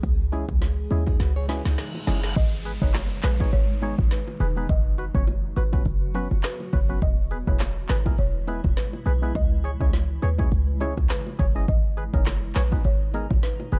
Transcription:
Already playing: E3 G#4
0.03 C#2 C#3 G#3, kick, closed hi-hat
0.32 G#3 C#4 E4 G#4, closed hi-hat, high bongo
0.49 C#2, kick
0.61 snare, closed hi-hat, high bongo
0.91 D#2 G#3 C#4 E4 G#4, closed hi-hat
1.06 D#4 G#4, kick, high bongo
1.20 C#2 F#4 B4, snare, closed hi-hat, reverse cymbal
1.36 G#4 C#5
1.49 G#3 C#4 E4 F#4 G#4 B4, snare, closed hi-hat, high bongo
1.65 C#2 D#4 G#4, snare, high bongo
1.78 snare, closed hi-hat
1.94 high bongo
2.07 F#1 G#3 C#4 E4 G#4, snare, closed hi-hat, low bongo
2.23 snare
2.36 G#1 B2 D#3 G#3 D#4 D#5, kick, closed hi-hat, crash, downlifter
2.65 G#4 B4, closed hi-hat
2.82 F#1 G#3 B3 D#4 G#4 B4 C#5, kick
2.94 snare, clap, closed hi-hat, high bongo
3.23 A#1 G#4 B4, snare, clap, closed hi-hat, low bongo
3.40 G#3 B3 D#4 G#4 C#5, kick, high bongo
3.53 G#1 C#5, closed hi-hat
3.82 G#3 B3 D#4 G#4 C#5, closed hi-hat, high bongo
3.98 G#1, kick, high bongo
4.11 B4, snare, closed hi-hat
4.28 high bongo
4.40 E1 G#4 B4, closed hi-hat, low bongo
4.57 G#3 B3 D#4 G#4 B4
4.69 F#1 C#3 F#3 B3 F#4 D#5, kick, closed hi-hat
4.98 F#4 B4, closed hi-hat
5.15 F#1 F#3 B3 C#4 F#4 C#5, kick
5.27 closed hi-hat, high bongo
5.56 G#1 F#4 B4, closed hi-hat, low bongo
5.73 F#3 B3 C#4 F#4 B4, kick, high bongo
5.86 F#1, closed hi-hat
6.14 F#3 B3 C#4 F#4 B4, closed hi-hat, high bongo
6.31 F#1, high bongo
6.43 B4, snare, clap, closed hi-hat
6.60 high bongo
6.73 F#1 F#4 B4 C#5, kick, closed hi-hat, low bongo
6.89 F#3 B3 C#4 F#4 B4
7.02 E1 B2 E3 G#3 E4 D#5, kick, closed hi-hat
7.31 G#4 B4, closed hi-hat
7.47 E1 G#3 B3 E4 G#4 B4 C#5, kick
7.59 snare, clap, closed hi-hat, high bongo
7.89 G#1 G#4 B4, snare, clap, closed hi-hat, low bongo
8.06 G#3 B3 E4 G#4 A#4, kick, high bongo
8.18 E1 C#5, closed hi-hat
8.47 G#3 B3 E4 G#4 B4, closed hi-hat, high bongo
8.64 E1, kick, high bongo
8.77 B4, snare, closed hi-hat
8.93 high bongo
9.06 B1 G#4 B4, closed hi-hat, low bongo
9.22 G#3 B3 E4 G#4 B4
9.35 C#2 C#3 D#5, kick, closed hi-hat
9.64 G#4 C#5, closed hi-hat
9.80 C#2 G#3 C#4 E4 G#4 C#5, kick
9.93 snare, closed hi-hat, high bongo
10.22 D#2 G#4 B4 C#5, closed hi-hat, low bongo
10.38 G#3 C#4 E4 G#4 C#5, kick, high bongo
10.52 C#2, closed hi-hat
10.80 G#3 C#4 E4 G#4 C#5, closed hi-hat, high bongo
10.97 C#2, kick, high bongo
11.09 B4, snare, clap, closed hi-hat
11.26 high bongo
11.39 F#1 G#4 C#5, kick, closed hi-hat, low bongo
11.55 G#3 C#4 E4 G#4 D#5
11.68 G#1 B2 D#3 D#4 D#5, kick, closed hi-hat
11.97 G#4 B4, closed hi-hat
12.13 F#1 G#3 B3 D#4 G#4 A#4 C#5, kick
12.26 snare, clap, closed hi-hat, high bongo
12.55 A#1 G#4 B4 C#5, snare, clap, closed hi-hat, low bongo
12.72 G#3 B3 D#4 G#4 B4, kick, high bongo
12.85 G#1 C#5, closed hi-hat
13.14 G#3 B3 D#4 G#4 A#4, closed hi-hat, high bongo
13.30 G#1, kick, high bongo
13.43 B4, snare, closed hi-hat
13.60 high bongo
13.72 E1 G#4 B4, closed hi-hat, low bongo

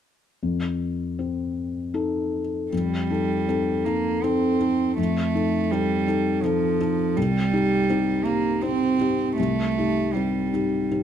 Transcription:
0.43 F2
1.19 C4
1.94 D#4 A4
2.72 F2 G3
3.10 D#4 A4
3.48 C4 D#4 A4
3.85 A#3 D#4 A4
4.23 C4 D#4 A4
4.61 D#4 A4
4.98 F2 A3
5.35 D#4 A4
5.71 G3 C4 D#4 A4
6.07 D#4 A4
6.43 F3 C4 D#4 A4
6.80 D#4 A4
7.16 C2 G3
7.53 D#4 G4
7.90 C4 D#4 G4
8.24 A#3 D#4 G4
8.62 C4 D#4 G4
9.01 D#4 G4
9.37 C2 A3
9.78 D#4 G4
10.13 G3 C4 D#4 G4
10.54 D#4 G4
10.91 C4 D#4 G4

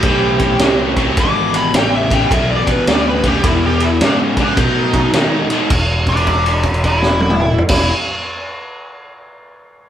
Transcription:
Already playing: C4 C#4 E4 G4
0.03 B1 A2 E3, kick, ride
0.40 kick, ride
0.59 C2 A2 F#3, snare, ride
0.96 A2 F#3, kick, ride
1.17 G#1 E2 B2 G#3 B3 D4 G4 D6, kick, ride
1.54 B5, ride
1.73 A1 E2 C#3 G5, snare, ride
1.95 E5
2.10 E2 C#3, kick, ride
2.14 G5
2.31 B1 E2 B2 E5, kick, ride
2.51 D5
2.67 kick, ride
2.72 B4
2.87 D2 E2 C#3 D5, snare, ride
3.09 B4
3.24 E2 C#3 G4, kick, ride
3.43 E2 B2 B3 D4 E4 G4 G#4, kick, ride
3.66 G4
3.80 E4, ride
4.01 E2 G#2 C#3 D4, snare, ride
4.37 E2 C#3 D4, kick, ride
4.57 B2 F#3 A3 D#4 F#4 D5, kick, ride
4.93 kick, ride
5.13 B2 D#3 G#3, snare, ride
5.50 B2 G#3, muted fingered electric bass stroke, ride
5.70 E1 G#3 D4 F#4 C#5, kick, crash
6.07 D4, kick, crash
6.17 crash
6.27 kick, crash
6.46 crash
6.63 kick, crash
6.74 crash
6.84 E4, kick, crash
7.02 snare
7.20 E4, high tom
7.30 mid tom
7.40 mid tom
7.58 floor tom
7.69 E1 G#3 C#4 D4 E4 F#4, kick, snare, crash

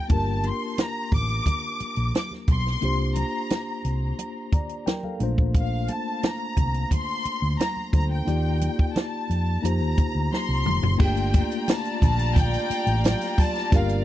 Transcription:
Already playing: D5
0.09 G1 A#3 D4 F4 G4 A5, kick, closed hi-hat, muted conga
0.13 A#4
0.43 C6, closed hi-hat, muted conga
0.78 A#5, snare, closed hi-hat, high conga
1.12 A1 D6, kick, open hi-hat, low conga
1.29 closed hi-hat
1.46 kick, closed hi-hat, muted conga, low conga
1.80 muted fingered electric bass stroke, closed hi-hat, muted conga
1.96 A#1, closed hi-hat
2.14 D6, snare, closed hi-hat, high conga
2.31 snare, high conga
2.47 B1 C6, kick, closed hi-hat, high conga
2.67 snare
2.81 C2 A#3 D4 F4 G4 C5, closed hi-hat, muted conga
3.15 A#5, closed hi-hat, muted conga
3.50 snare, closed hi-hat, high conga
3.85 C2, closed hi-hat
4.19 closed hi-hat, muted conga
4.52 D5 A#5, kick, closed hi-hat, muted conga, low conga
4.69 closed hi-hat
4.86 A#4 G5, snare, closed hi-hat, high conga
5.03 A4 F5, high conga
5.20 A#1 A3 A#3 D4 F4 C5, closed hi-hat, high conga
5.38 kick
5.54 F5, kick, closed hi-hat, muted conga
5.88 A5, closed hi-hat, muted conga
6.23 A#5, snare, closed hi-hat, high conga
6.57 C2, kick, closed hi-hat, low conga
6.74 closed hi-hat
6.91 C6, kick, closed hi-hat, muted conga, low conga
7.25 muted fingered electric bass stroke, closed hi-hat
7.42 D2
7.60 A#5, snare, closed hi-hat, high conga
7.77 high conga
7.93 D2 A#3 D4 F4 A4 C5 A#5, kick, closed hi-hat, high conga
8.12 G5
8.25 D#2 A#3 D#4 F4 G4 D5, closed hi-hat, muted conga
8.61 closed hi-hat, muted conga
8.79 kick
8.96 A5, snare, closed hi-hat, high conga
9.30 F2, closed hi-hat
9.62 F2 A#3 D#4 F4 G4 C5 A#5, closed hi-hat, muted conga
9.81 D#2
9.98 kick, closed hi-hat, low conga
10.15 D2
10.32 C6, snare, high conga
10.49 C2
10.65 F1, mid tom, high conga
10.83 F#1, floor tom
10.97 G1 G3 A#3 D4 F4 G4 G#4 D5 G5 A#5, kick, crash, tambourine, muted conga
11.07 A3
11.17 closed hi-hat, tambourine
11.34 kick, closed hi-hat, tambourine, muted conga
11.51 closed hi-hat, tambourine
11.68 A5, snare, closed hi-hat, tambourine, high conga
11.85 closed hi-hat
12.02 A#1 A5, kick, closed hi-hat, low conga
12.19 closed hi-hat
12.36 G5, kick, closed hi-hat, tambourine, muted conga, low conga
12.54 closed hi-hat
12.70 muted fingered electric bass stroke, closed hi-hat, tambourine
12.87 A1, closed hi-hat
13.04 G5, snare, closed hi-hat, tambourine, high conga
13.21 snare, closed hi-hat, tambourine
13.38 A5, kick, open hi-hat, tambourine, high conga
13.56 snare, closed hi-hat, tambourine
13.71 G1 A#3 D4 F4 G4 A#4 F5, kick, closed hi-hat, tambourine, muted conga
13.89 closed hi-hat, tambourine

